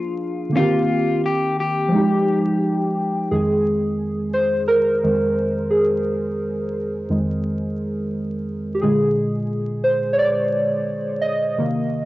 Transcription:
0.00 0.49 F3 medium
0.00 0.50 A#3 medium
0.00 0.52 D4 medium
0.00 0.52 F4 medium
0.00 0.53 G#4 medium
0.49 0.59 D3 soft
0.49 1.89 A#3 medium
0.55 1.90 D#3 medium
0.55 1.90 C4 medium
0.55 1.21 F4 loud
0.55 1.92 G4 medium
1.26 1.56 G4 medium
1.60 3.28 G4 medium
1.88 3.26 F3 medium
1.88 3.27 G#3 medium
1.95 3.29 D#4 medium
1.95 3.31 G4 medium
3.31 3.78 F2 soft
3.31 3.78 D#3 soft
3.31 3.78 G#3 medium
3.31 4.30 G#4 medium
4.33 4.69 C5 medium
4.68 5.75 A#4 medium
5.03 5.34 F2 soft
5.03 5.34 D#3 soft
5.03 5.35 G#3 soft
5.71 6.36 G#4 medium
7.09 8.09 F2 soft
7.09 8.09 D#3 soft
7.09 8.10 G#3 medium
8.74 8.82 G4 medium
8.81 9.82 A#2 soft
8.81 9.82 D3 soft
8.81 9.82 G#3 medium
8.81 9.88 G#4 medium
9.84 10.14 C5 medium
10.13 10.20 C#5 medium
10.18 11.26 D5 medium
11.22 11.88 D#5 loud
11.58 12.05 C3 soft
11.58 12.05 D#3 soft
11.58 12.05 A#3 medium

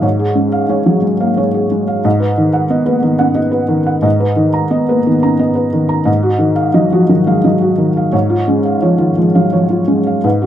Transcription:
0.02 2.00 G#2 medium
0.02 0.30 C#5 medium
0.19 0.47 G#4 medium
0.35 0.63 G#3 soft
0.35 0.63 C#4 soft
0.52 0.80 F5 medium
0.69 0.97 G#3 medium
0.69 0.97 C#5 medium
0.86 1.04 F#3 soft
0.86 1.14 G#4 medium
1.02 1.30 G#3 medium
1.20 1.38 A#3 soft
1.20 1.48 F5 medium
1.37 1.64 G#3 medium
1.37 1.64 C#5 medium
1.54 1.81 G#4 soft
1.72 1.98 G#3 medium
1.88 2.05 F5 medium
2.04 4.01 G#2 medium
2.04 2.31 D#5 medium
2.20 2.47 B4 medium
2.37 2.64 D#3 medium
2.37 2.64 D#4 medium
2.53 2.80 F#5 medium
2.70 2.97 B3 medium
2.70 2.97 D#5 medium
2.86 3.04 A#3 soft
2.86 3.13 B4 medium
3.02 3.30 D#3 medium
3.02 3.30 B3 soft
3.19 3.37 C#4 soft
3.19 3.47 F#5 medium
3.34 3.63 B3 medium
3.34 3.63 D#5 medium
3.51 3.80 B4 medium
3.68 3.97 D#3 medium
3.86 4.04 F#5 medium
4.02 6.02 G#2 medium
4.02 4.31 D#5 medium
4.20 4.48 B4 medium
4.36 4.64 D#3 medium
4.36 4.64 D#4 medium
4.53 4.81 A#5 medium
4.70 4.98 B3 medium
4.70 4.98 D#5 medium
4.89 5.06 A#3 medium
4.89 5.16 B4 medium
5.06 5.33 D#3 medium
5.06 5.33 B3 medium
5.22 5.39 C#4 soft
5.22 5.50 A#5 medium
5.39 5.67 B3 medium
5.39 5.67 D#5 medium
5.55 5.83 B4 medium
5.73 6.00 D#3 medium
5.89 6.07 A#5 medium
6.05 8.08 G#2 medium
6.05 6.34 D#5 medium
6.23 6.51 F#4 medium
6.38 6.67 D#3 medium
6.38 6.67 D#4 medium
6.56 6.85 F5 medium
6.74 7.02 F#3 medium
6.74 7.02 D#5 medium
6.92 7.10 F3 medium
6.92 7.20 F#4 medium
7.09 7.37 D#3 medium
7.09 7.37 F#3 medium
7.27 7.44 G#3 medium
7.27 7.55 F5 medium
7.44 7.72 F#3 medium
7.44 7.72 D#5 medium
7.61 7.89 F#4 medium
7.78 8.06 D#3 medium
7.97 8.14 F5 medium
8.12 10.20 G#2 medium
8.12 8.40 C#5 medium
8.30 8.57 F4 medium
8.48 8.75 G#3 medium
8.48 8.75 C#4 medium
8.65 8.92 F5 medium
8.82 9.10 F3 medium
8.82 9.10 C#5 medium
8.98 9.16 D#3 soft
8.98 9.27 F4 medium
9.18 9.46 F3 soft
9.18 9.45 G#3 soft
9.35 9.53 F#3 soft
9.35 9.63 F5 medium
9.53 9.81 F3 soft
9.53 9.81 C#5 medium
9.70 9.99 F4 soft
9.87 10.17 G#3 medium
9.87 10.17 C#4 soft
10.07 10.25 F5 soft
10.24 10.46 G#2 medium
10.24 10.46 B4 medium
10.42 10.46 D#4 medium
10.42 10.46 F#4 medium

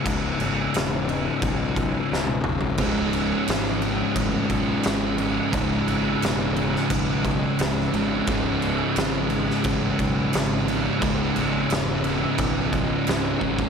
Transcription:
0.04 0.33 C#1 loud
0.04 2.77 C#2 medium
0.04 2.78 G#2 loud
0.04 2.79 C#3 loud
0.04 kick loud
0.04 crash medium
0.40 0.67 G#1 loud
0.40 crash medium
0.74 1.28 E1 medium
0.74 snare loud
0.74 crash medium
1.09 crash medium
1.42 1.95 B1 medium
1.42 kick loud
1.42 crash medium
1.76 kick medium
1.76 crash medium
2.12 2.38 C#1 medium
2.12 snare medium
2.27 high tom medium
2.44 2.72 G#1 medium
2.44 mid tom loud
2.61 floor tom loud
2.78 3.32 C#1 loud
2.78 5.21 C#2 medium
2.78 5.18 G#2 loud
2.78 5.18 C#3 loud
2.78 kick loud
2.78 crash medium
3.13 crash medium
3.48 4.01 G#1 medium
3.48 snare loud
3.48 crash medium
3.82 crash medium
4.16 4.43 A1 loud
4.16 kick loud
4.16 crash medium
4.50 4.77 B1 loud
4.50 kick medium
4.50 crash medium
4.83 5.38 G#1 medium
4.83 snare loud
4.83 crash medium
5.18 5.52 C#2 medium
5.18 5.53 G#2 medium
5.18 5.55 C#3 medium
5.18 crash medium
5.52 5.80 C#1 loud
5.52 7.96 C#2 loud
5.52 7.92 G#2 loud
5.52 7.92 C#3 loud
5.52 kick loud
5.52 crash medium
5.88 6.14 G#1 loud
5.88 crash medium
6.22 6.76 E1 loud
6.22 snare loud
6.22 crash medium
6.56 crash medium
6.76 snare soft
6.90 7.44 B1 loud
6.90 kick loud
6.90 crash medium
7.25 kick medium
7.25 crash medium
7.59 7.86 C#1 loud
7.59 snare loud
7.59 crash medium
7.93 8.20 G#1 medium
7.93 8.25 C#2 medium
7.93 8.26 G#2 medium
7.93 8.29 C#3 medium
7.93 crash medium
8.25 8.81 C#1 loud
8.25 10.68 C#2 loud
8.25 10.65 G#2 loud
8.25 10.65 C#3 loud
8.25 kick loud
8.25 crash medium
8.62 crash medium
8.96 9.50 G#1 loud
8.96 snare loud
8.96 crash medium
9.30 crash medium
9.50 snare soft
9.64 9.91 A1 medium
9.64 kick loud
9.64 crash medium
9.99 10.26 B1 loud
9.99 kick medium
9.99 crash medium
10.33 10.87 G#1 loud
10.33 snare loud
10.33 crash loud
10.66 10.99 C#2 medium
10.66 11.00 G#2 loud
10.66 11.01 C#3 medium
10.66 crash medium
10.99 11.29 C#1 medium
10.99 13.38 C#2 loud
10.99 13.39 G#2 loud
10.99 13.37 C#3 loud
10.99 kick loud
10.99 crash medium
11.36 11.64 G#1 loud
11.36 crash medium
11.70 12.24 E1 loud
11.70 snare loud
11.70 crash loud
12.04 crash medium
12.38 12.92 B1 medium
12.38 kick loud
12.38 crash medium
12.73 kick medium
12.73 crash medium
13.07 13.34 C#1 medium
13.07 snare loud
13.07 crash medium
13.39 13.68 G#1 medium
13.39 13.69 C#2 medium
13.39 13.69 G#2 medium
13.39 13.69 C#3 medium
13.39 kick medium
13.59 kick loud

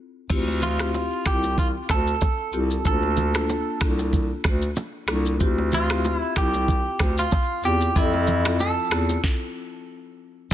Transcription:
0.30 1.07 D2 loud
0.30 0.75 C4 medium
0.30 0.75 E4 medium
0.30 0.75 F4 medium
0.30 0.75 G4 loud
0.30 kick loud
0.30 crash medium
0.30 low conga medium
0.30 shaker medium
0.48 high bongo medium
0.61 1.27 F4 medium
0.61 low bongo medium
0.61 low conga medium
0.61 shaker medium
0.79 0.96 C4 medium
0.79 0.96 E4 medium
0.79 0.96 F4 medium
0.79 0.96 G4 medium
0.79 finger snap medium
0.79 cross-stick loud
0.79 shaker medium
0.94 high bongo medium
0.94 shaker medium
1.25 1.76 C2 medium
1.25 1.45 C4 medium
1.25 1.45 E4 medium
1.25 1.45 F4 medium
1.25 1.45 G4 medium
1.25 1.56 G4 medium
1.25 finger snap medium
1.25 kick loud
1.25 cross-stick loud
1.25 shaker medium
1.44 high bongo medium
1.44 shaker medium
1.58 1.67 F4 medium
1.58 kick medium
1.58 low conga medium
1.58 shaker medium
1.89 2.15 D2 medium
1.89 2.86 A4 loud
1.89 finger snap medium
1.89 kick medium
1.89 cross-stick medium
1.89 low bongo medium
1.89 shaker medium
2.07 shaker medium
2.21 kick loud
2.21 high bongo medium
2.21 low bongo medium
2.21 shaker medium
2.53 2.78 C2 medium
2.53 2.83 C4 medium
2.53 2.83 E4 medium
2.53 2.83 F4 medium
2.53 2.83 G4 medium
2.53 shaker soft
2.71 shaker medium
2.85 3.63 D2 loud
2.85 3.31 A#3 medium
2.85 3.31 D4 medium
2.85 3.31 F4 medium
2.85 3.31 A4 loud
2.85 3.78 A4 medium
2.85 kick loud
2.85 low conga medium
2.85 shaker medium
3.03 high bongo medium
3.17 low bongo medium
3.17 low conga medium
3.17 shaker medium
3.35 3.51 A#3 medium
3.35 3.51 D4 medium
3.35 3.51 F4 medium
3.35 3.52 A4 medium
3.35 finger snap medium
3.35 cross-stick loud
3.35 shaker medium
3.49 high bongo medium
3.49 shaker medium
3.81 4.31 C2 medium
3.81 4.00 A#3 medium
3.81 4.00 D4 medium
3.81 4.00 F4 medium
3.81 4.01 A4 medium
3.81 finger snap medium
3.81 kick loud
3.81 cross-stick loud
3.81 shaker medium
3.99 high bongo medium
3.99 shaker medium
4.13 kick medium
4.13 low conga medium
4.13 shaker medium
4.44 4.70 D2 medium
4.44 finger snap medium
4.44 kick medium
4.44 cross-stick medium
4.44 low bongo medium
4.44 shaker medium
4.62 shaker medium
4.76 high bongo medium
4.76 low bongo medium
4.76 shaker medium
5.08 5.42 C2 loud
5.08 5.38 A#3 medium
5.08 5.38 D4 medium
5.08 5.38 F4 medium
5.08 5.39 A4 medium
5.08 finger snap medium
5.08 cross-stick loud
5.08 shaker soft
5.26 shaker medium
5.40 6.18 D2 loud
5.40 5.86 C4 medium
5.40 5.86 E4 medium
5.40 5.86 F4 medium
5.40 5.86 G4 loud
5.40 kick loud
5.40 low conga medium
5.40 shaker medium
5.58 high bongo medium
5.72 6.16 F4 medium
5.72 low bongo medium
5.72 low conga medium
5.72 shaker medium
5.90 6.06 C4 medium
5.90 6.07 E4 medium
5.90 6.07 F4 medium
5.90 6.07 G4 medium
5.90 finger snap medium
5.90 cross-stick loud
5.90 shaker medium
6.04 high bongo medium
6.04 shaker medium
6.16 6.33 E4 medium
6.36 6.87 C2 loud
6.36 6.56 C4 medium
6.36 6.56 E4 medium
6.36 6.56 F4 medium
6.36 6.56 G4 medium
6.36 7.19 G4 medium
6.36 finger snap medium
6.36 kick loud
6.36 cross-stick loud
6.36 shaker medium
6.54 high bongo medium
6.54 shaker medium
6.68 kick medium
6.68 low conga medium
6.68 shaker medium
6.99 7.25 D2 medium
6.99 finger snap medium
6.99 kick medium
6.99 cross-stick medium
6.99 low bongo medium
6.99 shaker medium
7.18 7.65 F4 medium
7.18 shaker medium
7.32 kick medium
7.32 high bongo medium
7.32 low bongo medium
7.32 shaker medium
7.63 7.89 E2 loud
7.63 7.94 C4 medium
7.63 7.94 E4 medium
7.63 7.94 F4 medium
7.63 7.94 G4 medium
7.63 7.98 G4 loud
7.63 shaker soft
7.81 shaker medium
7.96 8.73 F2 loud
7.96 8.41 F3 medium
7.96 8.41 C4 medium
7.96 8.41 E4 medium
7.96 8.56 E4 medium
7.96 8.41 A4 loud
7.96 kick loud
7.96 low conga medium
7.96 shaker medium
8.14 high bongo medium
8.27 low bongo medium
8.27 low conga medium
8.27 shaker medium
8.45 8.62 C4 medium
8.45 8.62 E4 medium
8.45 8.62 F4 medium
8.45 8.62 A4 medium
8.45 finger snap medium
8.45 cross-stick loud
8.45 low bongo medium
8.45 shaker medium
8.60 9.20 A4 medium
8.60 high bongo medium
8.60 shaker medium
8.91 9.17 E2 loud
8.91 9.11 C4 medium
8.91 9.11 E4 medium
8.91 9.11 F4 medium
8.91 9.11 A4 medium
8.91 finger snap medium
8.91 cross-stick loud
8.91 shaker medium
9.09 high bongo medium
9.09 shaker medium
9.24 kick loud
9.24 snare medium

